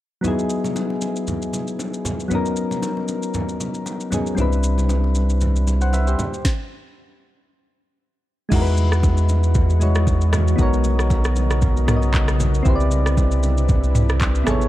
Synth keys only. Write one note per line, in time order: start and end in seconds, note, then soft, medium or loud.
0.21 2.26 F#3 medium
0.21 2.26 B3 medium
0.21 2.27 D#4 medium
0.26 2.28 E4 medium
0.26 2.29 G#4 medium
2.28 4.07 F#3 medium
2.28 4.08 B3 medium
2.28 4.09 C#4 medium
2.33 4.10 D#4 medium
2.33 4.10 A#4 medium
4.11 4.37 F#3 medium
4.11 4.38 B3 soft
4.11 4.38 C#4 soft
4.11 4.39 D#4 soft
4.11 4.39 G#4 medium
4.35 6.14 G3 medium
4.35 6.15 C4 medium
4.35 6.16 D4 medium
4.40 6.16 E4 medium
4.40 5.41 B4 medium
5.82 5.93 C5 medium
5.82 5.93 F#5 medium
5.93 6.07 B4 medium
5.93 6.07 E5 medium
6.07 6.32 G4 medium
6.07 6.32 C5 medium
8.49 9.77 G#3 medium
8.49 9.78 D#4 medium
8.49 9.79 E4 medium
8.54 9.80 F#4 medium
8.54 8.61 A#4 medium
8.62 9.84 B4 medium
9.80 10.58 G#3 medium
9.80 10.56 D#4 medium
9.80 10.59 E4 medium
9.80 10.58 F#4 medium
9.80 10.60 C#5 medium
10.56 11.84 B3 medium
10.56 11.85 D#4 medium
10.56 11.86 F#4 medium
10.61 11.87 A#4 medium
10.61 11.87 C#5 medium
11.87 12.65 B3 medium
11.87 12.65 D#4 medium
11.87 12.66 F#4 medium
11.87 12.66 A#4 medium
11.87 11.96 C#5 medium
11.96 12.70 D#5 medium
12.63 14.42 C4 medium
12.63 14.42 E4 medium
12.63 14.43 G4 medium
12.68 14.44 B4 medium
12.68 12.74 C5 medium
12.75 14.48 D5 medium
14.44 14.68 B3 medium
14.44 14.68 E4 medium
14.44 14.68 G#4 medium
14.49 14.68 A4 medium
14.49 14.68 C#5 medium